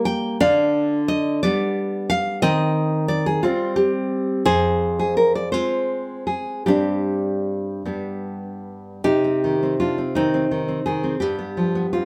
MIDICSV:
0, 0, Header, 1, 3, 480
1, 0, Start_track
1, 0, Key_signature, -3, "minor"
1, 0, Tempo, 671892
1, 293, Time_signature, 6, 3, 24, 8
1, 2687, Tempo, 705882
1, 3647, Tempo, 750939
1, 4607, Tempo, 791557
1, 6047, Tempo, 750939
1, 6527, Tempo, 708383
1, 8051, End_track
2, 0, Start_track
2, 0, Title_t, "Nylon-string guitar"
2, 0, Program_c, 0, 24
2, 0, Note_on_c, 0, 62, 72
2, 280, Note_off_c, 0, 62, 0
2, 289, Note_on_c, 0, 62, 82
2, 1026, Note_off_c, 0, 62, 0
2, 1026, Note_on_c, 0, 59, 79
2, 1732, Note_on_c, 0, 60, 85
2, 1738, Note_off_c, 0, 59, 0
2, 3132, Note_off_c, 0, 60, 0
2, 3159, Note_on_c, 0, 68, 79
2, 3879, Note_off_c, 0, 68, 0
2, 3879, Note_on_c, 0, 65, 63
2, 4607, Note_off_c, 0, 65, 0
2, 4612, Note_on_c, 0, 62, 53
2, 5665, Note_off_c, 0, 62, 0
2, 6042, Note_on_c, 0, 63, 62
2, 6741, Note_off_c, 0, 63, 0
2, 6773, Note_on_c, 0, 60, 57
2, 7488, Note_off_c, 0, 60, 0
2, 7488, Note_on_c, 0, 59, 58
2, 8051, Note_off_c, 0, 59, 0
2, 8051, End_track
3, 0, Start_track
3, 0, Title_t, "Nylon-string guitar"
3, 0, Program_c, 1, 24
3, 0, Note_on_c, 1, 55, 55
3, 0, Note_on_c, 1, 58, 58
3, 38, Note_on_c, 1, 79, 112
3, 265, Note_off_c, 1, 55, 0
3, 265, Note_off_c, 1, 58, 0
3, 277, Note_off_c, 1, 79, 0
3, 290, Note_on_c, 1, 77, 116
3, 297, Note_on_c, 1, 50, 80
3, 759, Note_off_c, 1, 77, 0
3, 774, Note_on_c, 1, 75, 107
3, 1002, Note_off_c, 1, 50, 0
3, 1009, Note_off_c, 1, 75, 0
3, 1020, Note_on_c, 1, 74, 110
3, 1025, Note_on_c, 1, 55, 56
3, 1029, Note_on_c, 1, 59, 64
3, 1480, Note_off_c, 1, 74, 0
3, 1497, Note_on_c, 1, 77, 108
3, 1709, Note_off_c, 1, 55, 0
3, 1711, Note_off_c, 1, 59, 0
3, 1725, Note_off_c, 1, 77, 0
3, 1730, Note_on_c, 1, 75, 120
3, 1735, Note_on_c, 1, 51, 84
3, 2185, Note_off_c, 1, 75, 0
3, 2203, Note_on_c, 1, 74, 102
3, 2324, Note_off_c, 1, 74, 0
3, 2331, Note_on_c, 1, 68, 87
3, 2423, Note_off_c, 1, 51, 0
3, 2448, Note_off_c, 1, 68, 0
3, 2449, Note_on_c, 1, 65, 93
3, 2455, Note_on_c, 1, 55, 54
3, 2459, Note_on_c, 1, 60, 65
3, 2679, Note_off_c, 1, 65, 0
3, 2686, Note_on_c, 1, 67, 83
3, 3138, Note_off_c, 1, 55, 0
3, 3140, Note_off_c, 1, 60, 0
3, 3142, Note_off_c, 1, 67, 0
3, 3163, Note_on_c, 1, 72, 104
3, 3169, Note_on_c, 1, 41, 77
3, 3511, Note_off_c, 1, 72, 0
3, 3526, Note_on_c, 1, 68, 76
3, 3641, Note_off_c, 1, 68, 0
3, 3644, Note_on_c, 1, 70, 82
3, 3760, Note_off_c, 1, 70, 0
3, 3763, Note_on_c, 1, 74, 81
3, 3861, Note_off_c, 1, 41, 0
3, 3866, Note_off_c, 1, 74, 0
3, 3868, Note_on_c, 1, 72, 92
3, 3873, Note_on_c, 1, 56, 47
3, 3877, Note_on_c, 1, 60, 49
3, 4333, Note_off_c, 1, 72, 0
3, 4347, Note_on_c, 1, 68, 73
3, 4579, Note_off_c, 1, 56, 0
3, 4579, Note_off_c, 1, 60, 0
3, 4590, Note_off_c, 1, 68, 0
3, 4597, Note_on_c, 1, 67, 72
3, 4601, Note_on_c, 1, 43, 61
3, 4604, Note_on_c, 1, 55, 44
3, 4607, Note_on_c, 1, 60, 42
3, 5296, Note_off_c, 1, 67, 0
3, 5299, Note_off_c, 1, 55, 0
3, 5301, Note_off_c, 1, 43, 0
3, 5301, Note_off_c, 1, 60, 0
3, 5323, Note_on_c, 1, 43, 51
3, 5325, Note_on_c, 1, 55, 38
3, 5328, Note_on_c, 1, 59, 41
3, 6021, Note_off_c, 1, 55, 0
3, 6022, Note_off_c, 1, 43, 0
3, 6022, Note_off_c, 1, 59, 0
3, 6043, Note_on_c, 1, 67, 79
3, 6048, Note_on_c, 1, 48, 54
3, 6171, Note_on_c, 1, 60, 42
3, 6297, Note_on_c, 1, 51, 38
3, 6362, Note_off_c, 1, 60, 0
3, 6417, Note_on_c, 1, 60, 42
3, 6483, Note_off_c, 1, 51, 0
3, 6505, Note_off_c, 1, 67, 0
3, 6525, Note_on_c, 1, 65, 70
3, 6533, Note_on_c, 1, 62, 36
3, 6604, Note_off_c, 1, 60, 0
3, 6649, Note_on_c, 1, 60, 43
3, 6652, Note_off_c, 1, 62, 0
3, 6760, Note_off_c, 1, 65, 0
3, 6765, Note_on_c, 1, 63, 65
3, 6773, Note_on_c, 1, 51, 43
3, 6842, Note_off_c, 1, 60, 0
3, 6893, Note_on_c, 1, 60, 43
3, 6963, Note_off_c, 1, 51, 0
3, 7010, Note_on_c, 1, 51, 45
3, 7080, Note_off_c, 1, 60, 0
3, 7125, Note_on_c, 1, 60, 43
3, 7197, Note_off_c, 1, 51, 0
3, 7221, Note_off_c, 1, 63, 0
3, 7243, Note_on_c, 1, 68, 72
3, 7249, Note_on_c, 1, 51, 42
3, 7313, Note_off_c, 1, 60, 0
3, 7364, Note_on_c, 1, 60, 40
3, 7434, Note_off_c, 1, 51, 0
3, 7452, Note_off_c, 1, 48, 0
3, 7469, Note_off_c, 1, 68, 0
3, 7476, Note_on_c, 1, 67, 64
3, 7480, Note_off_c, 1, 60, 0
3, 7482, Note_on_c, 1, 43, 56
3, 7601, Note_on_c, 1, 59, 43
3, 7727, Note_on_c, 1, 53, 40
3, 7794, Note_off_c, 1, 59, 0
3, 7849, Note_on_c, 1, 59, 40
3, 7919, Note_off_c, 1, 53, 0
3, 7943, Note_off_c, 1, 67, 0
3, 7969, Note_on_c, 1, 65, 63
3, 7974, Note_on_c, 1, 60, 37
3, 8040, Note_off_c, 1, 59, 0
3, 8051, Note_off_c, 1, 43, 0
3, 8051, Note_off_c, 1, 60, 0
3, 8051, Note_off_c, 1, 65, 0
3, 8051, End_track
0, 0, End_of_file